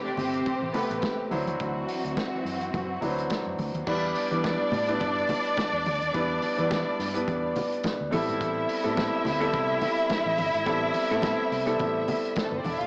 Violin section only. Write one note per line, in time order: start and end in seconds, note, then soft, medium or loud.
0.04 0.15 D4 medium
0.04 0.15 D5 medium
0.17 0.71 C4 loud
0.17 0.71 C5 loud
0.75 0.98 B3 medium
0.75 0.98 B4 medium
3.87 7.80 D4 loud
3.87 7.80 D5 loud
8.12 12.33 E4 loud
8.12 12.32 E5 loud
12.44 12.53 A3 medium
12.44 12.52 A4 medium
12.53 12.59 B3 medium
12.53 12.59 B4 medium
12.58 12.64 C4 medium
12.58 12.65 C5 medium
12.64 12.73 D4 medium
12.64 12.73 D5 medium
12.72 12.81 E4 medium
12.72 12.81 E5 loud
12.80 12.87 F4 medium
12.80 12.87 F5 medium